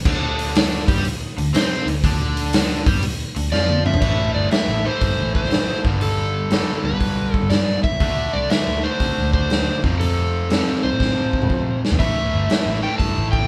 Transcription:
0.05 0.84 D2 medium
0.05 0.87 D3 medium
0.05 0.87 D4 loud
0.05 kick loud
0.05 crash medium
0.39 open hi-hat medium
0.55 snare loud
0.55 open hi-hat medium
0.87 1.03 G2 medium
0.87 1.04 G3 loud
0.87 1.04 G4 loud
0.87 kick loud
0.87 open hi-hat medium
1.04 muted picked electric bass stroke soft
1.04 muted overdriven electric guitar stroke medium
1.04 open hi-hat medium
1.38 1.53 D2 medium
1.38 1.51 D3 medium
1.38 open hi-hat medium
1.53 1.85 C3 medium
1.53 1.86 C4 medium
1.53 1.86 C5 loud
1.53 snare loud
1.53 open hi-hat medium
1.86 2.02 D2 medium
1.86 2.00 D3 medium
1.86 open hi-hat medium
2.04 2.82 D2 medium
2.04 2.85 D3 medium
2.04 2.86 D4 loud
2.04 kick medium
2.04 open hi-hat medium
2.37 open hi-hat medium
2.53 snare loud
2.53 open hi-hat medium
2.86 3.01 G2 loud
2.86 3.02 G3 loud
2.86 3.03 G4 loud
2.86 kick loud
2.86 open hi-hat medium
3.03 muted picked electric bass stroke soft
3.03 muted overdriven electric guitar stroke medium
3.03 open hi-hat medium
3.36 3.51 D2 medium
3.36 3.49 D3 medium
3.36 open hi-hat medium
3.52 3.99 F2 medium
3.52 4.01 F3 medium
3.52 4.02 F4 medium
3.52 3.86 D5 medium
3.52 snare medium
3.69 high tom medium
3.86 4.34 E5 loud
3.86 mid tom medium
3.94 floor tom medium
4.01 4.27 A1 medium
4.01 4.83 A2 medium
4.01 4.84 E3 medium
4.01 4.83 A3 medium
4.01 kick medium
4.01 crash medium
4.34 4.47 G1 medium
4.34 4.52 D5 medium
4.51 4.86 E5 medium
4.51 snare loud
4.51 open hi-hat soft
4.68 4.87 A1 medium
4.84 5.84 A2 medium
4.84 5.83 E3 medium
4.84 5.82 A3 medium
4.84 5.35 C5 medium
5.01 5.19 G2 medium
5.01 kick medium
5.01 open hi-hat soft
5.18 5.69 A1 medium
5.35 5.82 C5 medium
5.35 kick medium
5.44 snare soft
5.51 snare loud
5.51 open hi-hat soft
5.84 6.61 G1 medium
5.84 6.49 G2 medium
5.84 6.50 D3 medium
5.84 6.51 G3 medium
5.84 kick medium
6.01 6.84 A4 medium
6.01 open hi-hat soft
6.51 7.82 G2 medium
6.51 7.83 D3 medium
6.51 7.83 G3 medium
6.51 snare loud
6.51 open hi-hat soft
6.84 6.91 D2 loud
6.84 7.35 B4 medium
6.92 7.31 B1 medium
7.00 kick medium
7.00 open hi-hat soft
7.34 7.53 A4 medium
7.34 kick medium
7.42 7.49 G1 medium
7.50 7.76 G2 medium
7.50 7.83 D5 medium
7.50 snare medium
7.50 open hi-hat soft
7.83 8.35 E5 loud
7.83 kick medium
7.92 7.99 C2 medium
8.00 8.26 D2 medium
8.00 8.82 D3 medium
8.00 8.84 A3 medium
8.00 8.82 D4 medium
8.00 kick loud
8.00 open hi-hat soft
8.33 8.46 C2 medium
8.33 8.51 D5 medium
8.50 8.85 E5 medium
8.50 snare loud
8.50 open hi-hat soft
8.67 8.87 D2 medium
8.83 9.83 D3 medium
8.83 9.86 A3 medium
8.83 9.81 D4 medium
8.83 9.30 C5 medium
9.00 9.18 C3 medium
9.00 kick medium
9.00 open hi-hat soft
9.17 9.68 D2 medium
9.33 9.81 C5 medium
9.33 kick medium
9.50 snare medium
9.50 open hi-hat soft
9.83 10.49 F2 medium
9.83 10.60 F2 medium
9.83 10.50 C3 medium
9.83 10.50 F3 medium
9.83 kick medium
10.00 10.86 A4 medium
10.00 open hi-hat soft
10.50 11.81 F2 medium
10.50 11.82 C3 medium
10.50 11.83 F3 medium
10.50 snare loud
10.50 open hi-hat medium
10.83 10.90 C2 medium
10.83 11.79 C5 medium
10.93 11.31 A2 medium
11.00 kick medium
11.00 snare medium
11.33 kick medium
11.42 11.48 F2 medium
11.42 mid tom medium
11.50 11.76 F3 medium
11.50 kick medium
11.85 snare medium
11.92 11.98 E2 medium
11.92 floor tom medium
11.99 12.26 A1 medium
11.99 12.81 A2 medium
11.99 12.81 E3 medium
11.99 12.81 A3 loud
11.99 12.79 E5 medium
11.99 kick medium
11.99 open hi-hat soft
12.34 12.46 G1 medium
12.50 snare loud
12.50 open hi-hat soft
12.66 12.85 A1 medium
12.82 13.47 A2 medium
12.82 13.47 E3 medium
12.82 13.47 A3 medium
12.82 12.98 G5 medium
12.98 13.18 G2 medium
12.98 13.31 A5 loud
12.98 kick medium
12.98 open hi-hat soft
13.16 13.47 A1 medium
13.32 13.47 G5 medium
13.32 kick medium

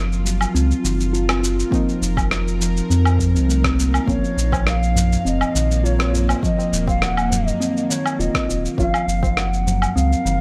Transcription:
0.00 0.46 F#1 loud
0.00 0.15 A#3 loud
0.00 2.67 F4 medium
0.12 shaker soft
0.25 0.40 F#3 medium
0.25 shaker medium
0.39 5.02 A#4 medium
0.39 low woodblock medium
0.39 shaker soft
0.54 0.73 C#2 medium
0.54 0.83 C4 loud
0.54 shaker soft
0.71 shaker soft
0.84 1.64 F#1 medium
0.84 0.93 D#3 loud
0.84 shaker medium
1.00 shaker soft
1.13 1.27 F4 loud
1.13 shaker soft
1.29 1.37 C4 medium
1.29 cross-stick medium
1.29 low woodblock medium
1.29 shaker soft
1.43 1.52 F4 medium
1.43 shaker medium
1.59 shaker soft
1.70 2.16 F3 loud
1.70 4.08 F3 medium
1.70 3.74 A#3 medium
1.70 3.75 C4 medium
1.70 3.76 D#4 loud
1.70 kick loud
1.70 shaker soft
1.81 5.03 D#4 medium
1.85 4.08 C4 medium
1.85 shaker soft
2.01 2.81 F1 loud
2.01 shaker medium
2.17 kick loud
2.17 low woodblock medium
2.17 shaker soft
2.31 cross-stick medium
2.31 shaker soft
2.48 shaker soft
2.61 2.75 F3 medium
2.61 shaker medium
2.77 6.43 F5 medium
2.77 shaker soft
2.90 3.36 F2 medium
2.90 3.04 C4 loud
2.90 shaker soft
3.05 low woodblock medium
3.05 shaker soft
3.19 3.33 F3 loud
3.19 kick medium
3.19 shaker medium
3.35 3.99 C2 loud
3.35 3.43 C4 medium
3.35 shaker soft
3.49 3.63 A3 medium
3.49 shaker soft
3.64 3.77 C4 loud
3.64 kick loud
3.64 cross-stick medium
3.64 shaker soft
3.78 3.92 A#3 medium
3.78 shaker medium
3.94 low woodblock medium
3.94 shaker soft
4.07 4.17 A#1 loud
4.07 6.43 A#2 medium
4.07 4.51 F3 loud
4.07 4.20 A#3 medium
4.07 4.21 C4 medium
4.07 4.21 C#4 medium
4.07 4.69 C#5 loud
4.07 kick loud
4.07 shaker soft
4.24 shaker soft
4.35 5.16 A#1 loud
4.35 9.73 A#3 medium
4.35 shaker medium
4.52 4.66 F3 medium
4.52 kick loud
4.52 tabla na medium
4.52 tabla tin medium
4.52 low woodblock medium
4.52 shaker soft
4.67 5.25 F5 loud
4.67 cross-stick medium
4.67 shaker soft
4.83 shaker soft
4.93 5.11 F3 medium
4.93 6.43 C#5 medium
4.93 tabla tin soft
4.93 tabla ge loud
4.93 shaker medium
5.12 shaker soft
5.25 5.44 F1 medium
5.25 5.53 C4 loud
5.25 5.86 D#5 loud
5.25 shaker soft
5.41 low woodblock medium
5.41 shaker soft
5.55 6.34 A#1 medium
5.55 5.64 D#3 loud
5.55 tabla tin soft
5.55 shaker medium
5.71 shaker soft
5.84 5.98 F4 medium
5.84 6.29 C#5 medium
5.84 shaker soft
5.99 6.07 C4 medium
5.99 cross-stick medium
5.99 tabla na medium
5.99 shaker soft
6.13 6.22 F4 medium
6.13 tabla ge medium
6.13 shaker medium
6.29 tabla na medium
6.29 low woodblock medium
6.29 shaker soft
6.43 8.78 D#3 medium
6.43 6.86 F3 loud
6.43 8.76 F3 loud
6.43 6.85 D#5 loud
6.43 kick loud
6.43 shaker soft
6.59 tabla na medium
6.59 shaker soft
6.72 7.52 D#1 loud
6.72 shaker medium
6.87 7.01 F3 medium
6.87 7.04 F5 loud
6.87 kick loud
6.87 tabla na medium
6.87 tabla tin medium
6.87 shaker soft
7.02 7.48 F#5 loud
7.02 cross-stick medium
7.02 shaker soft
7.17 low woodblock medium
7.17 shaker soft
7.30 7.46 F#3 medium
7.30 tabla tin soft
7.30 tabla ge medium
7.30 shaker medium
7.47 7.92 D#5 loud
7.47 shaker soft
7.60 7.89 C4 loud
7.60 shaker soft
7.77 shaker soft
7.90 7.99 D#3 loud
7.90 8.21 C#5 loud
7.90 shaker medium
8.06 low woodblock medium
8.06 shaker soft
8.19 8.29 D#1 medium
8.19 8.33 F4 loud
8.19 8.64 D#5 loud
8.19 shaker soft
8.35 8.43 C4 medium
8.35 kick medium
8.35 cross-stick medium
8.35 shaker soft
8.48 8.67 D#1 medium
8.48 8.58 F4 medium
8.48 tabla tin soft
8.48 shaker medium
8.65 shaker soft
8.77 8.88 F#1 medium
8.77 9.21 F3 loud
8.77 8.91 A#3 medium
8.77 8.91 C#4 medium
8.77 8.92 F4 loud
8.77 9.39 F5 loud
8.77 kick loud
8.77 shaker soft
8.94 low woodblock medium
8.94 shaker soft
9.07 9.87 F#1 loud
9.07 shaker medium
9.23 9.36 F3 medium
9.23 kick loud
9.23 tabla na medium
9.23 tabla tin medium
9.23 shaker soft
9.30 10.41 A#4 medium
9.37 9.98 F#5 loud
9.37 cross-stick medium
9.37 shaker soft
9.54 shaker soft
9.66 9.81 F#3 medium
9.66 tabla tin medium
9.66 tabla ge medium
9.66 shaker medium
9.82 low woodblock medium
9.82 shaker soft
9.96 10.14 C#2 medium
9.96 10.24 C4 loud
9.96 10.41 F5 loud
9.96 shaker soft
10.13 shaker soft
10.25 10.41 F#1 medium
10.25 10.34 D#3 loud
10.25 tabla tin soft
10.25 shaker medium

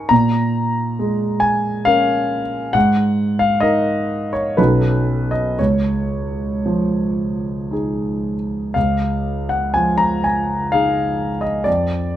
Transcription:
0.00 0.13 G#3 soft
0.00 0.13 D#4 soft
0.00 0.13 A#4 soft
0.00 0.12 G#5 medium
0.00 0.10 C#6 medium
0.09 2.71 A#2 soft
0.09 1.42 A#5 medium
0.99 2.40 G#3 soft
1.40 1.85 G#5 medium
1.85 2.71 C#4 soft
1.85 2.71 A#4 soft
1.85 2.74 F5 medium
2.73 4.54 G#2 soft
2.73 3.40 F#5 medium
3.39 3.63 F5 medium
3.60 4.53 D#4 soft
3.60 4.53 A#4 soft
3.60 4.32 D#5 medium
4.33 4.57 C#5 medium
4.57 5.56 B1 soft
4.57 5.55 F#3 soft
4.57 5.55 C#4 soft
4.57 5.55 D#4 soft
4.57 5.56 A4 soft
4.57 5.32 B4 medium
5.31 5.58 D#5 medium
5.59 8.72 C#2 soft
5.59 7.71 C#5 medium
6.66 8.36 F3 soft
7.71 8.72 D#4 soft
7.71 8.73 G#4 soft
8.74 11.63 C#2 soft
8.74 9.50 F5 medium
9.49 9.75 F#5 medium
9.74 11.30 F3 soft
9.74 9.99 G#5 medium
9.98 10.23 A#5 medium
10.24 10.73 G#5 medium
10.72 11.62 D#4 soft
10.72 11.63 G#4 soft
10.72 11.43 F5 medium
11.41 11.65 D#5 medium
11.64 12.16 F2 soft
11.64 12.16 D5 medium

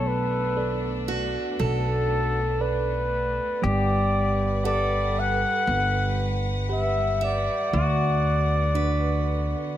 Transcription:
0.00 1.34 B1 medium
0.00 3.58 A3 medium
0.00 3.57 B3 medium
0.00 3.58 B3 medium
0.00 3.58 D4 medium
0.00 3.76 A4 loud
0.08 1.09 B4 medium
0.57 1.56 A4 soft
0.57 1.56 B4 soft
0.57 1.56 D5 soft
1.08 2.39 F#4 medium
1.59 3.38 B1 medium
1.59 2.91 A4 soft
1.59 2.63 A4 medium
2.61 3.60 A4 soft
2.61 3.60 B4 soft
2.61 3.66 B4 medium
2.61 3.60 D5 medium
3.61 5.42 G1 medium
3.61 7.67 G3 medium
3.61 7.68 G3 medium
3.61 7.68 G4 medium
3.61 7.67 B4 medium
3.61 4.65 D5 loud
3.61 9.77 F#5 medium
4.64 5.64 G4 soft
4.64 5.97 A4 medium
4.64 5.64 B4 soft
4.64 5.21 D5 loud
4.64 5.64 F#5 soft
5.19 6.44 F#5 loud
5.67 7.47 G1 medium
6.69 7.69 G4 soft
6.69 7.69 B4 soft
6.69 7.25 E5 medium
6.69 7.69 F#5 soft
7.21 9.77 D5 medium
7.21 8.19 E5 medium
7.73 9.53 D2 medium
7.73 9.77 D3 medium
7.73 9.77 B3 medium
7.73 9.77 F#4 medium
8.74 9.74 D4 soft
8.74 9.75 F#4 soft
8.74 9.75 B4 soft
8.74 9.77 B4 soft

